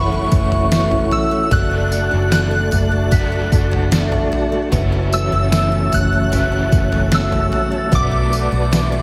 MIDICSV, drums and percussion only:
0, 0, Header, 1, 2, 480
1, 0, Start_track
1, 0, Key_signature, 3, "minor"
1, 0, Tempo, 800000
1, 914, Time_signature, 4, 2, 24, 8
1, 5413, End_track
2, 0, Start_track
2, 0, Title_t, "Drums"
2, 190, Note_on_c, 9, 54, 68
2, 192, Note_on_c, 9, 36, 101
2, 250, Note_off_c, 9, 54, 0
2, 252, Note_off_c, 9, 36, 0
2, 311, Note_on_c, 9, 43, 64
2, 371, Note_off_c, 9, 43, 0
2, 430, Note_on_c, 9, 54, 92
2, 431, Note_on_c, 9, 38, 103
2, 490, Note_off_c, 9, 54, 0
2, 491, Note_off_c, 9, 38, 0
2, 548, Note_on_c, 9, 43, 74
2, 608, Note_off_c, 9, 43, 0
2, 669, Note_on_c, 9, 43, 57
2, 729, Note_off_c, 9, 43, 0
2, 908, Note_on_c, 9, 43, 103
2, 908, Note_on_c, 9, 54, 63
2, 910, Note_on_c, 9, 36, 108
2, 968, Note_off_c, 9, 43, 0
2, 968, Note_off_c, 9, 54, 0
2, 970, Note_off_c, 9, 36, 0
2, 1151, Note_on_c, 9, 54, 66
2, 1211, Note_off_c, 9, 54, 0
2, 1391, Note_on_c, 9, 38, 112
2, 1392, Note_on_c, 9, 54, 91
2, 1451, Note_off_c, 9, 38, 0
2, 1452, Note_off_c, 9, 54, 0
2, 1632, Note_on_c, 9, 43, 60
2, 1632, Note_on_c, 9, 54, 64
2, 1692, Note_off_c, 9, 43, 0
2, 1692, Note_off_c, 9, 54, 0
2, 1871, Note_on_c, 9, 43, 68
2, 1871, Note_on_c, 9, 54, 75
2, 1873, Note_on_c, 9, 36, 101
2, 1931, Note_off_c, 9, 43, 0
2, 1931, Note_off_c, 9, 54, 0
2, 1933, Note_off_c, 9, 36, 0
2, 2114, Note_on_c, 9, 36, 109
2, 2114, Note_on_c, 9, 54, 67
2, 2174, Note_off_c, 9, 36, 0
2, 2174, Note_off_c, 9, 54, 0
2, 2239, Note_on_c, 9, 43, 62
2, 2299, Note_off_c, 9, 43, 0
2, 2352, Note_on_c, 9, 38, 117
2, 2352, Note_on_c, 9, 54, 93
2, 2412, Note_off_c, 9, 38, 0
2, 2412, Note_off_c, 9, 54, 0
2, 2473, Note_on_c, 9, 43, 73
2, 2533, Note_off_c, 9, 43, 0
2, 2597, Note_on_c, 9, 43, 56
2, 2657, Note_off_c, 9, 43, 0
2, 2835, Note_on_c, 9, 36, 105
2, 2835, Note_on_c, 9, 43, 100
2, 2835, Note_on_c, 9, 54, 65
2, 2895, Note_off_c, 9, 36, 0
2, 2895, Note_off_c, 9, 43, 0
2, 2895, Note_off_c, 9, 54, 0
2, 3076, Note_on_c, 9, 54, 69
2, 3136, Note_off_c, 9, 54, 0
2, 3314, Note_on_c, 9, 38, 113
2, 3315, Note_on_c, 9, 54, 100
2, 3374, Note_off_c, 9, 38, 0
2, 3375, Note_off_c, 9, 54, 0
2, 3556, Note_on_c, 9, 43, 62
2, 3556, Note_on_c, 9, 54, 70
2, 3616, Note_off_c, 9, 43, 0
2, 3616, Note_off_c, 9, 54, 0
2, 3797, Note_on_c, 9, 43, 72
2, 3797, Note_on_c, 9, 54, 73
2, 3857, Note_off_c, 9, 43, 0
2, 3857, Note_off_c, 9, 54, 0
2, 4035, Note_on_c, 9, 36, 109
2, 4035, Note_on_c, 9, 54, 63
2, 4095, Note_off_c, 9, 36, 0
2, 4095, Note_off_c, 9, 54, 0
2, 4155, Note_on_c, 9, 43, 60
2, 4215, Note_off_c, 9, 43, 0
2, 4270, Note_on_c, 9, 54, 83
2, 4271, Note_on_c, 9, 38, 117
2, 4330, Note_off_c, 9, 54, 0
2, 4331, Note_off_c, 9, 38, 0
2, 4394, Note_on_c, 9, 43, 71
2, 4454, Note_off_c, 9, 43, 0
2, 4516, Note_on_c, 9, 43, 55
2, 4576, Note_off_c, 9, 43, 0
2, 4754, Note_on_c, 9, 36, 104
2, 4756, Note_on_c, 9, 43, 107
2, 4756, Note_on_c, 9, 54, 63
2, 4814, Note_off_c, 9, 36, 0
2, 4816, Note_off_c, 9, 43, 0
2, 4816, Note_off_c, 9, 54, 0
2, 4997, Note_on_c, 9, 54, 64
2, 5057, Note_off_c, 9, 54, 0
2, 5236, Note_on_c, 9, 38, 114
2, 5237, Note_on_c, 9, 54, 92
2, 5296, Note_off_c, 9, 38, 0
2, 5297, Note_off_c, 9, 54, 0
2, 5413, End_track
0, 0, End_of_file